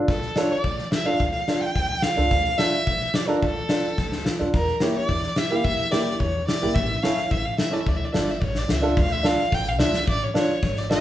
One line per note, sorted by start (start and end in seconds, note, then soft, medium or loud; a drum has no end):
0.08 0.25 D2 medium
0.08 0.39 A4 medium
0.08 kick medium
0.08 snare soft
0.22 snare soft
0.36 0.50 D4 medium
0.36 0.50 F4 medium
0.36 0.50 A4 medium
0.36 0.51 C#5 medium
0.36 snare medium
0.51 0.62 C#5 medium
0.62 0.81 D2 medium
0.62 0.92 D5 medium
0.62 kick medium
0.78 snare soft
0.92 0.99 F4 soft
0.92 0.99 A4 soft
0.92 1.07 E5 medium
0.92 snare medium
1.05 1.19 D4 medium
1.05 1.20 F4 medium
1.05 1.20 A4 medium
1.05 1.32 F5 medium
1.20 1.37 D2 medium
1.20 kick medium
1.32 1.62 F5 medium
1.48 1.61 D4 medium
1.48 1.62 F4 medium
1.48 1.62 A4 medium
1.48 snare medium
1.61 2.04 G5 medium
1.75 2.01 D2 medium
1.75 kick medium
1.75 snare soft
2.02 2.10 F4 soft
2.02 2.11 A4 soft
2.02 2.60 F5 loud
2.02 snare medium
2.17 2.26 D2 medium
2.17 2.31 D4 medium
2.17 2.31 F4 medium
2.17 2.31 A4 medium
2.31 2.48 D2 medium
2.31 kick medium
2.31 snare soft
2.44 snare soft
2.58 2.72 D4 medium
2.58 2.72 F4 medium
2.58 2.73 A4 medium
2.58 3.16 E5 medium
2.58 snare medium
2.87 3.04 D2 medium
2.87 kick medium
3.01 snare soft
3.14 3.21 F4 soft
3.14 3.22 A4 soft
3.14 3.29 D5 medium
3.14 snare medium
3.27 3.42 D4 medium
3.27 3.42 F4 medium
3.27 3.42 A4 medium
3.27 3.42 A#4 medium
3.42 3.60 D2 medium
3.42 4.22 A4 medium
3.42 kick medium
3.69 3.84 D4 medium
3.69 3.84 F4 medium
3.69 3.84 A4 medium
3.69 snare medium
3.98 4.24 D2 medium
3.98 kick medium
3.98 snare soft
4.12 snare medium
4.25 4.32 F4 soft
4.25 4.33 A4 medium
4.25 snare medium
4.39 4.49 D#2 medium
4.39 4.53 D4 medium
4.39 4.54 F4 medium
4.39 4.54 A4 medium
4.54 4.70 E2 medium
4.54 4.83 A#4 medium
4.54 kick medium
4.54 snare soft
4.67 snare soft
4.80 4.95 A#3 medium
4.80 4.95 E4 medium
4.80 4.96 G4 medium
4.80 4.95 C#5 medium
4.80 snare medium
4.96 5.39 D5 medium
5.09 5.26 E2 medium
5.09 kick medium
5.23 snare soft
5.36 5.44 E4 soft
5.36 5.44 G4 soft
5.36 5.52 E5 medium
5.36 snare medium
5.50 5.65 A#3 medium
5.50 5.65 E4 medium
5.50 5.65 G4 medium
5.50 5.65 F5 medium
5.64 5.81 E2 medium
5.64 5.93 E5 loud
5.64 kick medium
5.78 snare soft
5.91 6.05 A#3 medium
5.91 6.06 E4 medium
5.91 6.06 G4 medium
5.91 6.12 D5 medium
5.91 snare medium
6.12 6.20 D5 medium
6.19 6.45 E2 medium
6.19 6.47 C#5 medium
6.19 kick medium
6.47 6.55 E4 soft
6.47 6.55 G4 soft
6.47 6.76 D5 medium
6.47 snare medium
6.62 6.71 A#1 medium
6.62 6.76 A#3 medium
6.62 6.76 E4 medium
6.62 6.76 G4 medium
6.62 snare soft
6.74 6.92 A1 medium
6.74 7.04 E5 medium
6.74 kick medium
6.74 snare soft
7.02 7.17 C#4 medium
7.02 7.18 E4 medium
7.02 7.18 A4 medium
7.02 7.32 F5 medium
7.02 snare medium
7.18 snare soft
7.31 7.48 A1 medium
7.31 7.46 E5 medium
7.31 kick medium
7.45 7.59 F5 medium
7.58 7.65 E4 soft
7.58 7.66 A4 soft
7.58 7.75 E5 medium
7.58 snare medium
7.71 7.86 C#4 medium
7.71 7.86 E4 medium
7.71 7.87 A4 medium
7.71 7.81 D5 medium
7.80 7.89 E5 medium
7.86 8.03 D2 medium
7.86 7.98 D5 medium
7.86 kick medium
7.96 8.06 E5 medium
8.04 8.13 D5 soft
8.12 8.39 G1 medium
8.12 8.28 D4 medium
8.12 8.28 F4 medium
8.12 8.29 A4 medium
8.12 8.24 E5 soft
8.12 snare medium
8.22 8.32 D5 medium
8.30 8.42 E5 medium
8.40 8.67 A1 medium
8.40 8.43 D5 medium
8.40 kick medium
8.45 8.60 C#5 medium
8.55 8.74 D5 medium
8.55 snare medium
8.68 8.95 C#2 medium
8.68 8.76 F4 soft
8.68 8.77 A4 soft
8.68 snare medium
8.72 8.99 E5 medium
8.82 8.97 D4 medium
8.82 8.97 F4 medium
8.82 8.97 A4 medium
8.97 9.31 D2 medium
8.97 9.14 F5 medium
8.97 kick medium
8.97 crash medium
9.12 9.28 E5 medium
9.23 9.38 D4 medium
9.23 9.38 F4 medium
9.23 9.39 A4 medium
9.23 9.56 F5 medium
9.23 snare medium
9.52 9.81 A1 medium
9.52 9.70 G5 loud
9.52 kick medium
9.52 snare soft
9.68 9.80 F5 medium
9.79 9.97 D2 medium
9.79 9.93 D4 medium
9.79 9.94 F4 medium
9.79 9.94 A4 medium
9.79 10.06 E5 medium
9.79 snare loud
9.94 snare medium
10.07 10.24 A1 medium
10.07 10.25 D5 medium
10.07 kick medium
10.23 10.36 C#5 medium
10.34 10.49 D4 medium
10.34 10.49 F4 medium
10.34 10.49 A4 medium
10.34 10.80 C#5 medium
10.34 snare medium
10.63 10.96 G#1 medium
10.63 kick medium
10.63 snare soft
10.76 10.90 D5 medium
10.76 snare soft
10.90 11.01 D4 medium
10.90 11.01 F4 medium
10.90 11.01 A4 medium
10.90 11.01 E5 medium
10.90 snare medium